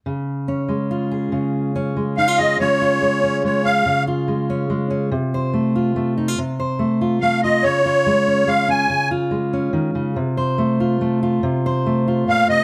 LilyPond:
<<
  \new Staff \with { instrumentName = "Accordion" } { \time 3/4 \key des \major \tempo 4 = 142 r2. | r2 f''8 ees''8 | des''2 des''8 f''8~ | f''8 r2 r8 |
r2. | r2 f''8 ees''8 | des''2 f''8 aes''8~ | aes''8 r2 r8 |
r2. | r2 f''8 ees''8 | }
  \new Staff \with { instrumentName = "Steel-string acoustic guitar" } { \time 3/4 \key des \major << { r4 des'4 f'8 aes'8~ | aes'4 des'4 ees'16 f'16 aes'8 | <aes des' f' aes'>8 f'4 des'4 des'8 | r8 f'4 des'4 des'8 |
r8 c''4 f'4 ees'16 f'16 | r8 c''4 f'4 f'8 | r8 f'4 des'4 des'8 | r8 f'4 des'4. |
r8 c''4 f'4 f'8 | r8 c''4 f'4. | } \\ { des4. aes4. | des4. aes4. | des4 aes4 aes4 | des4 aes4 aes4 |
c4 a4 a4 | c4 a4 a4 | des4 aes4 aes4 | des4 aes4 ees8 des8 |
c4 a4 a4 | c4 a4 bes,8 c8 | } >> }
>>